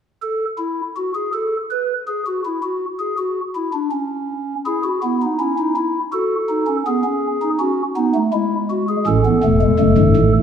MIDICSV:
0, 0, Header, 1, 2, 480
1, 0, Start_track
1, 0, Key_signature, 3, "major"
1, 0, Tempo, 740741
1, 140, Time_signature, 3, 2, 24, 8
1, 3499, Tempo, 732601
1, 6792, End_track
2, 0, Start_track
2, 0, Title_t, "Pipe organ"
2, 0, Program_c, 0, 19
2, 140, Note_on_c, 0, 69, 72
2, 290, Note_off_c, 0, 69, 0
2, 377, Note_on_c, 0, 64, 72
2, 528, Note_off_c, 0, 64, 0
2, 625, Note_on_c, 0, 66, 68
2, 728, Note_off_c, 0, 66, 0
2, 745, Note_on_c, 0, 68, 70
2, 848, Note_off_c, 0, 68, 0
2, 861, Note_on_c, 0, 69, 79
2, 1010, Note_off_c, 0, 69, 0
2, 1106, Note_on_c, 0, 71, 68
2, 1254, Note_off_c, 0, 71, 0
2, 1344, Note_on_c, 0, 68, 73
2, 1447, Note_off_c, 0, 68, 0
2, 1468, Note_on_c, 0, 66, 64
2, 1569, Note_off_c, 0, 66, 0
2, 1590, Note_on_c, 0, 64, 70
2, 1690, Note_off_c, 0, 64, 0
2, 1704, Note_on_c, 0, 66, 65
2, 1852, Note_off_c, 0, 66, 0
2, 1941, Note_on_c, 0, 68, 74
2, 2044, Note_off_c, 0, 68, 0
2, 2061, Note_on_c, 0, 66, 71
2, 2209, Note_off_c, 0, 66, 0
2, 2301, Note_on_c, 0, 64, 78
2, 2404, Note_off_c, 0, 64, 0
2, 2418, Note_on_c, 0, 62, 64
2, 2522, Note_off_c, 0, 62, 0
2, 2538, Note_on_c, 0, 61, 70
2, 2950, Note_off_c, 0, 61, 0
2, 3020, Note_on_c, 0, 64, 86
2, 3020, Note_on_c, 0, 68, 61
2, 3122, Note_off_c, 0, 68, 0
2, 3137, Note_on_c, 0, 66, 61
2, 3167, Note_off_c, 0, 64, 0
2, 3240, Note_off_c, 0, 66, 0
2, 3256, Note_on_c, 0, 64, 68
2, 3258, Note_on_c, 0, 59, 75
2, 3360, Note_off_c, 0, 64, 0
2, 3381, Note_on_c, 0, 63, 63
2, 3406, Note_off_c, 0, 59, 0
2, 3482, Note_off_c, 0, 63, 0
2, 3497, Note_on_c, 0, 61, 75
2, 3498, Note_on_c, 0, 64, 60
2, 3601, Note_off_c, 0, 61, 0
2, 3616, Note_on_c, 0, 63, 81
2, 3720, Note_off_c, 0, 63, 0
2, 3723, Note_off_c, 0, 64, 0
2, 3736, Note_on_c, 0, 64, 86
2, 3886, Note_off_c, 0, 64, 0
2, 3973, Note_on_c, 0, 69, 65
2, 3975, Note_on_c, 0, 66, 73
2, 4125, Note_off_c, 0, 66, 0
2, 4211, Note_on_c, 0, 63, 73
2, 4318, Note_off_c, 0, 63, 0
2, 4333, Note_on_c, 0, 61, 70
2, 4390, Note_off_c, 0, 69, 0
2, 4439, Note_off_c, 0, 61, 0
2, 4459, Note_on_c, 0, 68, 67
2, 4461, Note_on_c, 0, 59, 86
2, 4564, Note_off_c, 0, 59, 0
2, 4575, Note_on_c, 0, 61, 73
2, 4725, Note_off_c, 0, 61, 0
2, 4820, Note_on_c, 0, 63, 87
2, 4873, Note_off_c, 0, 68, 0
2, 4923, Note_off_c, 0, 63, 0
2, 4939, Note_on_c, 0, 61, 85
2, 4939, Note_on_c, 0, 66, 68
2, 5088, Note_off_c, 0, 61, 0
2, 5088, Note_off_c, 0, 66, 0
2, 5177, Note_on_c, 0, 63, 72
2, 5178, Note_on_c, 0, 59, 84
2, 5282, Note_off_c, 0, 59, 0
2, 5299, Note_on_c, 0, 57, 81
2, 5327, Note_off_c, 0, 63, 0
2, 5403, Note_off_c, 0, 57, 0
2, 5418, Note_on_c, 0, 56, 73
2, 5418, Note_on_c, 0, 64, 66
2, 5568, Note_off_c, 0, 64, 0
2, 5663, Note_on_c, 0, 66, 64
2, 5765, Note_off_c, 0, 66, 0
2, 5785, Note_on_c, 0, 68, 65
2, 5832, Note_off_c, 0, 56, 0
2, 5886, Note_off_c, 0, 68, 0
2, 5901, Note_on_c, 0, 61, 69
2, 5901, Note_on_c, 0, 69, 74
2, 5902, Note_on_c, 0, 33, 90
2, 5902, Note_on_c, 0, 45, 85
2, 6004, Note_off_c, 0, 61, 0
2, 6022, Note_on_c, 0, 59, 72
2, 6050, Note_off_c, 0, 33, 0
2, 6050, Note_off_c, 0, 45, 0
2, 6124, Note_off_c, 0, 59, 0
2, 6144, Note_on_c, 0, 28, 82
2, 6144, Note_on_c, 0, 40, 82
2, 6145, Note_on_c, 0, 57, 80
2, 6245, Note_off_c, 0, 57, 0
2, 6260, Note_on_c, 0, 56, 75
2, 6291, Note_off_c, 0, 28, 0
2, 6291, Note_off_c, 0, 40, 0
2, 6362, Note_off_c, 0, 56, 0
2, 6378, Note_on_c, 0, 30, 82
2, 6379, Note_on_c, 0, 42, 85
2, 6380, Note_on_c, 0, 57, 69
2, 6481, Note_off_c, 0, 30, 0
2, 6482, Note_off_c, 0, 42, 0
2, 6498, Note_on_c, 0, 44, 86
2, 6499, Note_on_c, 0, 32, 94
2, 6601, Note_off_c, 0, 44, 0
2, 6602, Note_off_c, 0, 32, 0
2, 6621, Note_on_c, 0, 33, 95
2, 6621, Note_on_c, 0, 45, 94
2, 6725, Note_off_c, 0, 69, 0
2, 6769, Note_off_c, 0, 33, 0
2, 6769, Note_off_c, 0, 45, 0
2, 6792, Note_off_c, 0, 57, 0
2, 6792, End_track
0, 0, End_of_file